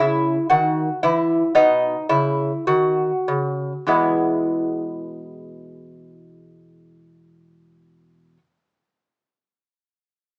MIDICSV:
0, 0, Header, 1, 2, 480
1, 0, Start_track
1, 0, Key_signature, 4, "major"
1, 0, Tempo, 1047120
1, 718, Tempo, 1117318
1, 1198, Tempo, 1195219
1, 1683, Time_signature, 4, 2, 24, 8
1, 2158, Tempo, 1174168
1, 4327, End_track
2, 0, Start_track
2, 0, Title_t, "Lute"
2, 0, Program_c, 0, 24
2, 0, Note_on_c, 0, 49, 52
2, 0, Note_on_c, 0, 64, 75
2, 165, Note_off_c, 0, 49, 0
2, 221, Note_off_c, 0, 64, 0
2, 227, Note_on_c, 0, 66, 62
2, 231, Note_on_c, 0, 51, 55
2, 404, Note_off_c, 0, 51, 0
2, 460, Note_off_c, 0, 66, 0
2, 472, Note_on_c, 0, 64, 73
2, 476, Note_on_c, 0, 52, 58
2, 651, Note_off_c, 0, 52, 0
2, 707, Note_off_c, 0, 64, 0
2, 710, Note_on_c, 0, 47, 58
2, 712, Note_on_c, 0, 63, 75
2, 883, Note_off_c, 0, 47, 0
2, 941, Note_off_c, 0, 63, 0
2, 945, Note_on_c, 0, 64, 65
2, 946, Note_on_c, 0, 49, 57
2, 1124, Note_off_c, 0, 49, 0
2, 1183, Note_off_c, 0, 64, 0
2, 1193, Note_on_c, 0, 51, 55
2, 1193, Note_on_c, 0, 66, 61
2, 1369, Note_off_c, 0, 51, 0
2, 1438, Note_on_c, 0, 49, 55
2, 1614, Note_off_c, 0, 49, 0
2, 1664, Note_off_c, 0, 66, 0
2, 1673, Note_on_c, 0, 40, 50
2, 1676, Note_on_c, 0, 47, 43
2, 1677, Note_on_c, 0, 64, 51
2, 1679, Note_on_c, 0, 56, 41
2, 1681, Note_on_c, 0, 59, 42
2, 3504, Note_off_c, 0, 40, 0
2, 3507, Note_off_c, 0, 47, 0
2, 3508, Note_off_c, 0, 64, 0
2, 3510, Note_off_c, 0, 56, 0
2, 3512, Note_off_c, 0, 59, 0
2, 4327, End_track
0, 0, End_of_file